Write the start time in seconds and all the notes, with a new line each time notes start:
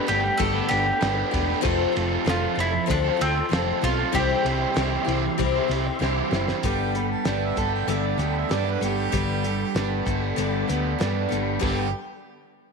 Already playing: A4 G5 B5
0.07 G1 G3 A3 B3 D4 G4 B4, ride
0.23 muted overdriven electric guitar stroke
0.37 G1 G2 D3 A3 B3 D4 G4 A4, kick, ride
0.54 B3 D4 B4
0.69 G1 A3 B3 D4 G4, ride
0.86 muted overdriven electric guitar stroke
1.01 G1 G3 A3 B3 D4 G4, snare, ride
1.05 B4
1.31 E1 G3 A3 B3 D4 G4, kick, ride
1.36 B4
1.48 B3 B4
1.52 D4
1.61 F1 F3 A3 C4 F4 A4 A5 C6, kick
1.65 F4 A4, ride
1.92 A3 C4 F4 A4
1.97 F1 C4 F4 A4, ride
2.10 C4 F4 A4
2.25 F1 F3 A3 C4 F4 A4, snare, ride
2.29 F4 A4
2.55 F1 A3 C4 A4, ride
2.60 E4 F4 A4
2.74 muted overdriven electric guitar stroke
2.86 D2 F3 C4 F4 A4, kick, ride
2.91 D4
3.05 C4 F4 A4
3.17 C4 F4 A4
3.21 D2 C4, ride
3.37 muted overdriven electric guitar stroke
3.49 F1 F3 C4 F4 A4
3.53 A3 C4 F4 A4, snare, ride
3.82 B1 A3 C4 F4 A4, kick, ride
3.86 F4 A4
3.98 C4 F4 A4
4.12 C2 C3 E3 G3 C4 E4 G4 E5 C6, kick, ride
4.17 E4 C5
4.43 C2 G3 C4 E4 G4, ride
4.48 E4 C5
4.62 G3 C4 E4 C5
4.74 C2 C3 E3 G3 C4 E4 G4, snare, ride
4.80 G3 C4 E4 C5
5.05 C2 C4 E4 G4, ride
5.10 G3 C4 E4 C5
5.26 muted overdriven electric guitar stroke
5.38 C2 C3 G3 C4 E4 G4, kick, ride
5.56 G3 C4 E4 C5
5.68 C2 C4 E4 G4, ride
5.86 muted overdriven electric guitar stroke
5.99 C2 C3 E3 G3 C4 E4 G4, snare
6.03 C4 E4 C5
6.31 F#1 G3 C4 E4 G4, snare
6.35 C5
6.48 G3 C4 E4 C5, snare
6.63 G1 G2 D3 G3 B3 D4 A4 G5 B5, kick, closed hi-hat
6.95 G3 B3 D4 A4 B5, closed hi-hat
7.11 A5
7.25 G1 G3 B3 D4 A4 G5, snare, closed hi-hat
7.45 E5
7.56 G1 G3 B3 D4 A4 A5, kick, closed hi-hat
7.75 G5
7.88 G1 G2 D3 G3 B3 D4 A4 E5, closed hi-hat
8.07 D5
8.18 D2 G3 B3 D4 A4, closed hi-hat
8.22 G5
8.38 E5
8.49 G2 G3 B3 D4 A4, snare, closed hi-hat
8.53 D5
8.71 B4
8.81 G1 G3 B3 D4 G4 A4, closed hi-hat
9.12 G1 G2 D3 G3 B3 D4 A4, kick, closed hi-hat
9.44 G3 B3 D4 A4, closed hi-hat
9.74 G1 G3 B3 D4 A4, snare, closed hi-hat
10.05 G1 G3 B3 D4 A4, kick, closed hi-hat
10.36 G1 G2 D3 G3 B3 D4 A4, closed hi-hat
10.68 D2 G3 B3 D4 A4, closed hi-hat
10.99 G2 G3 B3 D4 A4, snare, closed hi-hat
11.29 G1 G3 B3 D4 A4, closed hi-hat
11.59 G1 G2 D3 G3 B3 D4 G4 A4 B4 G5, kick, crash